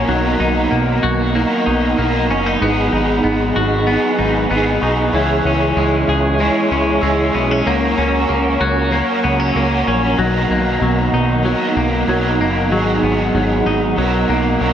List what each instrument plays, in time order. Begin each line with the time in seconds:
Already playing: clean electric guitar A#3 C#4 F#4, overdriven electric guitar F#4 A#4, tonewheel organ A#5
0.06 analog synth bass B1, overdriven electric guitar B2 D#3 F#3, clean electric guitar F#3, tonewheel organ D#5 F#5
0.11 overdriven electric guitar B3 D#4 A#4
0.39 analog synth bass B1, clean electric guitar D#4
0.71 analog synth bass B1, clean electric guitar A#3
1.03 analog synth bass B1, clean electric guitar F#4
1.34 overdriven electric guitar F#3 B3 D#4, clean electric guitar A#3
1.39 overdriven electric guitar A#4
1.66 analog synth bass B1, clean electric guitar D#4
1.97 analog synth bass B1, overdriven electric guitar F#3 B3 D#4, clean electric guitar A#3
2.03 overdriven electric guitar A#4
2.29 analog synth bass F#1, clean electric guitar C#4
2.46 clean electric guitar D#4
2.59 analog synth bass G#1, overdriven electric guitar G#2 D#3 F#3, clean electric guitar B3, tonewheel organ G#4 F#5 B5
2.64 overdriven electric guitar B3 D#4 G#4
2.92 analog synth bass G#1, clean electric guitar D#4
3.24 analog synth bass G#1, clean electric guitar B3
3.56 analog synth bass G#1, clean electric guitar F#4
3.85 overdriven electric guitar F#3 B3 D#4, clean electric guitar B3
3.91 overdriven electric guitar G#4
4.19 analog synth bass G#1, clean electric guitar D#4
4.49 analog synth bass G#1, overdriven electric guitar F#3 B3 D#4, clean electric guitar B3
4.54 overdriven electric guitar G#4
4.82 analog synth bass B1, clean electric guitar D#4, glockenspiel C#6
5.02 glockenspiel F#6
5.11 analog synth bass C#2, overdriven electric guitar C#3 G#3, clean electric guitar E3, tonewheel organ C#5 E5 C#6
5.16 overdriven electric guitar C#4 E4 G#4
5.21 glockenspiel G#6
5.44 analog synth bass C#2, clean electric guitar C#4
5.76 analog synth bass C#2, clean electric guitar G#3
6.08 analog synth bass C#2, clean electric guitar G#4
6.38 overdriven electric guitar G#3 C#4 E4, clean electric guitar G#3
6.43 overdriven electric guitar G#4
6.71 analog synth bass C#2, clean electric guitar C#4
7.01 analog synth bass C#2, overdriven electric guitar G#3 C#4 E4, clean electric guitar G#3, glockenspiel E6
7.06 overdriven electric guitar G#4
7.34 analog synth bass B1, clean electric guitar B3
7.51 clean electric guitar C#4
7.65 analog synth bass C#2, overdriven electric guitar C#3 F#3 C#4 F#4 A#4, clean electric guitar A#3, tonewheel organ C#5 F#5 A#5
7.96 analog synth bass C#2, clean electric guitar C#4, overdriven electric guitar F#4 A#4
8.01 overdriven electric guitar C#4
8.29 analog synth bass C#2, clean electric guitar A#3
8.60 analog synth bass C#2, clean electric guitar F#4, glockenspiel G#6
8.90 overdriven electric guitar F#3 C#4 F#4, clean electric guitar A#3
8.96 overdriven electric guitar A#4
9.24 analog synth bass C#2, clean electric guitar B3
9.40 clean electric guitar C#4
9.54 analog synth bass C#2, overdriven electric guitar F#3 C#4 F#4, clean electric guitar A#3
9.60 overdriven electric guitar A#4
9.87 analog synth bass A#1, clean electric guitar C#4
10.16 analog synth bass B1, overdriven electric guitar B2 D#3 F#3, clean electric guitar F#3, tonewheel organ D#5 F#5, glockenspiel A#6
10.21 overdriven electric guitar B3 D#4 A#4
10.50 analog synth bass B1, clean electric guitar A#3
10.81 analog synth bass B1, clean electric guitar F#3
11.13 analog synth bass B1, clean electric guitar D#4
11.42 overdriven electric guitar F#3 B3 D#4, clean electric guitar F#3
11.48 overdriven electric guitar A#4
11.76 analog synth bass B1, clean electric guitar A#3
12.05 analog synth bass B1, overdriven electric guitar F#3 B3, glockenspiel G#6
12.09 clean electric guitar F#3, overdriven electric guitar D#4 A#4
12.39 analog synth bass F#1, clean electric guitar A#3
12.68 analog synth bass G#1, overdriven electric guitar G#2 D#3 F#3, tonewheel organ G#4
12.72 clean electric guitar F#3, overdriven electric guitar B3 D#4
12.76 overdriven electric guitar G#4
13.03 analog synth bass G#1, clean electric guitar B3
13.34 analog synth bass G#1, clean electric guitar F#3
13.66 analog synth bass G#1, clean electric guitar D#4
13.95 analog synth bass B1, overdriven electric guitar F#3 B3 D#4, clean electric guitar F#3, tonewheel organ A#5
14.01 overdriven electric guitar A#4
14.29 analog synth bass B1, clean electric guitar A#3
14.59 analog synth bass B1, overdriven electric guitar F#3 B3 D#4, clean electric guitar F#3
14.65 overdriven electric guitar A#4